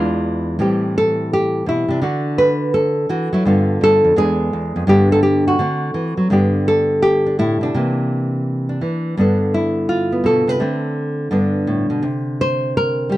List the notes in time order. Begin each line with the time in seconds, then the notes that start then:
Already playing: E2 E3 G#3 D4 F4
0.59 A2 E3 G3 C4 G4
0.98 A4
1.33 G4
1.66 B2 E4
1.88 C3 D4
2.02 D3 D4 F#4 A4
2.38 B4
2.74 A4
3.09 E3 F#4
3.33 F#3 E4
3.45 G2 D3 B3 F4 A4
3.81 G2 A4
4.04 F2
4.16 E2 G#3 B3 D4 G#4
4.53 E2
4.76 F2
4.87 G2 D3 B3 D4 G4
5.12 A4
5.23 G4
5.48 F#4
5.59 D3 A3 C4
5.94 E3
6.17 F#3
6.30 G2 D3 B3 D4 G4
6.68 A4
7.02 G4
7.26 D4
7.39 A2 E4
7.61 B2 D4
7.74 C3 E3 A#3
8.69 D4
8.81 E3
9.17 G2 D3 B3 D4 A4
9.54 E4
9.89 F4
10.12 B3
10.24 B2 A4
10.47 C3 B4
10.60 D3 A3 C4
11.31 G2 D3 B3 D4
11.67 A2
11.90 B2
12.03 C3
12.41 C5
12.77 A#4
13.09 G3 G4